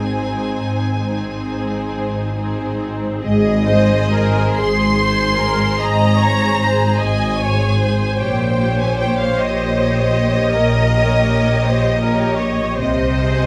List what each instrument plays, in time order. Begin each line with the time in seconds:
Already playing: double bass section G#1, cello section G#2, viola section C4 D#4, violin section G#4 C5 G#5
0.56 double bass section G#1, cello section G#2
1.02 viola section C4 D#4, violin section G#4 C5
1.92 double bass section G#1, cello section G#2
2.36 viola section C4 D#4, violin section G#4 C5
3.24 double bass section G#1, cello section G#2, viola section G#4, violin section D#5
3.67 violin section G#4 C5, viola section C5
4.15 viola section A#4
4.58 double bass section G#1, cello section G#2, viola section G#4, violin section C6
5.00 violin section G#4 C5, viola section C5
5.39 viola section A#4
5.79 double bass section G#1, cello section G#2, viola section D#5, violin section A#5
6.20 violin section G#4 C5, viola section C#5
6.62 viola section C5
7.00 double bass section G#1, cello section G#2, viola section D#5, violin section G#5
7.40 violin section G#4 C5, viola section C#5
7.80 viola section C5
8.17 double bass section A#1, cello section A#2, violin section G4 C#5 G5
8.57 violin section G4 C#5
8.80 violin section G#5
8.98 violin section G5
9.19 violin section F5
9.38 double bass section A#1, cello section A#2, violin section D#5
9.75 violin section G4 C#5
10.55 double bass section A#1, cello section A#2, viola section A#4
10.92 violin section G4 C#5
11.65 double bass section A#1, cello section A#2, viola section C5
12.01 violin section G4 C#5, viola section A#4
12.39 viola section C#5
12.78 double bass section C2, cello section C3, viola section C5, violin section D#5
13.20 violin section G#4 C5